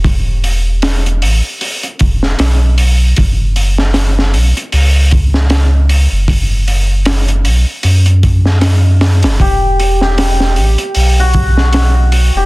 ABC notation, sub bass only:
X:1
M:4/4
L:1/16
Q:"Swing 16ths" 1/4=77
K:Edor
V:1 name="Sub bass" clef=bass
E,,,6 A,,, z3 E,,,2 B,,,4 | F,,,6 B,,, z C,,6- C,, F,,,- | F,,,6 B,,, z F,,6- F,, F,,, | E,,,6 A,,, z B,,,6- B,,, E,,, |]